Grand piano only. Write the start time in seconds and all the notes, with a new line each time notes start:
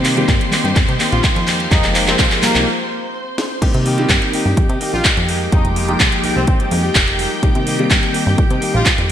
Already playing: D#3 G3 A#3 C4 G4
0.16 D#3 G3 A#3 C4 G4
1.71 F3 G#3 A#3 D#4 G4
2.07 F3 G#3 A#3 D#4 G4
3.62 D#3 G3 A#3 C4 G4
3.97 D#3 G3 A#3 C4 G4
5.52 F3 G#3 A#3 D#4 G4
5.87 F3 G#3 A#3 D#4 G4
7.43 D#3 G3 A#3 C4 G4
7.78 D#3 G3 A#3 C4 G4